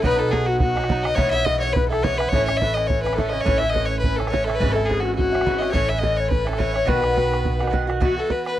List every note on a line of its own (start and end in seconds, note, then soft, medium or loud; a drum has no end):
0.03 1.15 B1 medium
0.03 0.19 B2 medium
0.03 0.18 F#3 medium
0.03 0.17 B3 medium
0.03 0.15 D#4 loud
0.03 0.20 B4 loud
0.03 0.34 B4 medium
0.03 bodhran medium
0.12 0.31 D#4 medium
0.12 bodhran soft
0.19 0.29 F#3 soft
0.19 0.30 B3 soft
0.19 0.33 A4 medium
0.29 0.75 B2 medium
0.29 0.75 F#3 medium
0.29 0.76 B3 medium
0.29 0.74 D#4 medium
0.29 0.48 G#4 medium
0.33 0.50 G#4 medium
0.33 bodhran medium
0.46 0.59 F#4 medium
0.46 0.61 F#4 medium
0.60 1.05 F#4 medium
0.60 0.86 F#4 medium
0.60 bodhran medium
0.75 0.88 F#3 soft
0.75 0.89 B3 soft
0.75 0.88 D#4 medium
0.75 bodhran medium
0.84 bodhran medium
0.88 1.04 B2 medium
0.88 1.05 F#3 medium
0.88 1.03 B3 medium
0.88 1.02 D#4 medium
0.88 bodhran medium
1.03 1.16 F#3 soft
1.03 1.16 B3 soft
1.03 1.17 D#4 soft
1.03 1.16 D#5 loud
1.03 1.21 D#5 medium
1.03 bodhran medium
1.15 2.30 B1 medium
1.15 1.32 G#2 medium
1.15 1.33 E3 medium
1.15 1.33 B3 medium
1.15 1.31 E4 medium
1.15 1.30 C#5 loud
1.15 bodhran medium
1.19 1.47 C#5 medium
1.30 1.46 B3 medium
1.30 1.45 E4 medium
1.30 1.46 E5 loud
1.35 1.45 E3 soft
1.45 1.90 G#2 medium
1.45 1.93 E3 medium
1.45 1.91 B3 medium
1.45 1.90 E4 medium
1.45 1.59 D#5 loud
1.45 1.64 D#5 medium
1.45 bodhran medium
1.60 1.74 C#5 medium
1.60 1.77 C#5 medium
1.73 1.87 B4 medium
1.73 1.90 B4 medium
1.73 bodhran medium
1.88 2.04 B3 medium
1.88 2.03 E4 soft
1.88 2.05 A4 medium
1.92 2.03 E3 soft
1.92 bodhran medium
2.03 2.19 G#2 medium
2.03 2.19 E3 medium
2.03 2.19 B3 medium
2.03 2.18 E4 medium
2.03 2.19 C#5 loud
2.03 2.18 C#5 medium
2.03 bodhran medium
2.18 2.32 B3 soft
2.18 2.32 E4 medium
2.18 2.30 B4 loud
2.18 2.28 B4 medium
2.18 bodhran medium
2.22 2.32 E3 soft
2.29 3.44 A1 medium
2.29 2.33 B4 medium
2.29 2.44 C#5 loud
2.29 2.47 C#5 loud
2.29 bodhran medium
2.33 2.48 A2 medium
2.33 2.48 E3 medium
2.33 2.49 C#4 medium
2.33 2.47 E4 medium
2.41 bodhran soft
2.45 2.61 E4 medium
2.45 2.58 C#5 loud
2.45 2.62 C#5 medium
2.45 bodhran medium
2.50 2.61 E3 soft
2.50 2.62 C#4 medium
2.57 2.75 E5 loud
2.57 2.75 E5 medium
2.61 3.05 A2 medium
2.61 3.08 E3 medium
2.61 3.06 C#4 medium
2.61 3.05 E4 medium
2.61 bodhran medium
2.74 2.88 D#5 medium
2.74 2.89 D#5 medium
2.74 bodhran soft
2.87 3.02 C#5 medium
2.87 3.03 C#5 medium
2.87 bodhran medium
3.02 3.18 E4 soft
3.02 3.16 B4 medium
3.02 3.19 B4 medium
3.02 bodhran soft
3.07 3.17 E3 soft
3.07 3.18 C#4 soft
3.13 3.32 A2 medium
3.13 3.31 A4 medium
3.13 bodhran soft
3.18 3.33 E3 medium
3.18 3.32 C#4 medium
3.18 3.31 E4 medium
3.18 3.35 A4 medium
3.18 bodhran medium
3.29 3.45 E4 soft
3.29 3.42 D#5 medium
3.29 3.45 D#5 medium
3.34 3.44 E3 soft
3.34 3.45 C#4 soft
3.41 3.61 A2 medium
3.41 3.59 C#5 loud
3.46 4.58 A1 medium
3.46 3.62 E3 medium
3.46 3.62 C#4 medium
3.46 3.60 E4 medium
3.46 3.61 C#5 medium
3.46 bodhran medium
3.56 3.71 E5 loud
3.56 bodhran soft
3.60 3.73 C#4 medium
3.60 3.74 E4 medium
3.60 3.76 E5 medium
3.65 3.71 E3 soft
3.70 4.17 A2 soft
3.70 4.21 E3 medium
3.70 3.87 D#5 loud
3.74 4.19 C#4 medium
3.74 4.18 E4 medium
3.74 3.89 D#5 medium
3.74 bodhran medium
3.85 3.99 C#5 medium
3.89 3.95 C#5 medium
3.99 4.18 B4 medium
4.04 4.20 B4 medium
4.04 bodhran medium
4.16 4.32 C#4 soft
4.16 4.31 E4 soft
4.16 4.28 A4 medium
4.16 4.34 A4 medium
4.16 bodhran soft
4.22 4.30 E3 soft
4.27 4.47 A2 medium
4.27 4.46 C#5 medium
4.27 bodhran soft
4.31 4.47 E3 medium
4.31 4.47 C#4 medium
4.31 4.46 E4 medium
4.31 4.46 C#5 medium
4.31 bodhran medium
4.44 4.60 E4 medium
4.44 4.56 A4 medium
4.44 4.62 A4 medium
4.49 4.59 E3 soft
4.49 4.60 C#4 soft
4.49 bodhran soft
4.55 4.74 B4 loud
4.60 5.72 G#1 medium
4.60 4.76 G#2 medium
4.60 4.76 E3 medium
4.60 4.76 C#4 medium
4.60 4.74 E4 medium
4.60 4.77 B4 medium
4.60 bodhran medium
4.72 4.88 E4 medium
4.72 4.87 A4 medium
4.72 4.86 A4 medium
4.77 4.88 E3 soft
4.77 4.89 C#4 medium
4.86 5.32 G#2 medium
4.86 5.33 E3 medium
4.86 5.01 G#4 medium
4.86 5.06 G#4 medium
4.90 5.33 C#4 medium
4.90 5.31 E4 medium
4.90 bodhran medium
5.00 5.15 F#4 medium
5.05 5.16 F#4 medium
5.15 5.60 F#4 medium
5.15 5.75 F#4 medium
5.15 bodhran medium
5.32 5.45 E3 soft
5.32 5.45 C#4 soft
5.32 5.45 E4 medium
5.32 bodhran soft
5.41 5.61 G#2 medium
5.41 bodhran soft
5.46 5.62 E3 medium
5.46 5.61 C#4 medium
5.46 5.59 E4 medium
5.46 bodhran medium
5.58 5.74 C#4 soft
5.58 5.74 E4 soft
5.58 5.71 D#5 medium
5.58 bodhran soft
5.63 5.73 E3 soft
5.71 6.86 A1 medium
5.71 5.89 A2 medium
5.71 5.90 E3 medium
5.71 5.89 C#4 medium
5.71 5.87 E4 medium
5.71 5.90 C#5 loud
5.71 5.89 C#5 loud
5.71 bodhran medium
5.82 bodhran soft
5.88 6.01 E3 soft
5.88 6.01 C#4 soft
5.88 6.02 E4 medium
5.88 6.00 E5 medium
5.99 6.45 A2 medium
5.99 6.46 E3 medium
5.99 6.46 C#4 medium
5.99 6.19 D#5 medium
5.99 6.21 D#5 medium
6.03 6.44 E4 medium
6.03 bodhran medium
6.17 6.29 C#5 medium
6.17 6.33 C#5 medium
6.30 6.48 B4 medium
6.30 6.47 B4 medium
6.30 bodhran medium
6.45 6.57 E3 soft
6.45 6.58 C#4 soft
6.45 6.59 E4 soft
6.45 6.60 A4 medium
6.45 bodhran soft
6.53 bodhran soft
6.58 6.74 A2 medium
6.58 6.75 E3 medium
6.58 6.74 C#4 medium
6.58 6.72 E4 medium
6.58 6.90 C#5 medium
6.58 6.75 C#5 medium
6.58 bodhran medium
6.74 6.86 E3 soft
6.74 6.87 C#4 soft
6.74 6.87 E4 soft
6.74 6.90 C#5 medium
6.74 bodhran soft
6.85 8.00 B1 medium
6.85 7.02 B2 medium
6.85 7.03 D#3 medium
6.85 7.02 B3 medium
6.85 7.00 F#4 loud
6.85 7.74 B4 medium
6.85 bodhran medium
6.96 bodhran soft
7.02 7.15 D#3 soft
7.02 7.15 B3 soft
7.02 7.15 F#4 medium
7.02 bodhran soft
7.14 7.60 B2 medium
7.14 7.60 D#3 soft
7.14 7.60 B3 medium
7.14 7.58 F#4 medium
7.14 bodhran medium
7.33 bodhran soft
7.45 bodhran medium
7.59 7.70 D#3 soft
7.59 7.71 B3 soft
7.59 7.72 F#4 soft
7.59 bodhran soft
7.67 7.88 B2 medium
7.67 7.88 D#3 medium
7.67 bodhran soft
7.73 7.88 B3 medium
7.73 7.86 F#4 medium
7.73 bodhran medium
7.87 8.00 D#3 soft
7.87 8.00 B3 medium
7.87 8.01 F#4 medium
7.87 bodhran soft
8.00 8.17 B2 medium
8.00 8.17 E3 medium
8.00 8.17 B3 medium
8.00 8.15 F#4 medium
8.00 8.17 F#4 medium
8.00 8.21 F#4 medium
8.00 bodhran medium
8.16 8.58 E3 soft
8.16 8.58 B3 soft
8.16 8.58 F#4 soft
8.16 8.32 A4 medium
8.16 8.33 A4 medium
8.30 8.46 B4 medium
8.30 bodhran medium
8.46 8.59 B4 medium
8.46 bodhran medium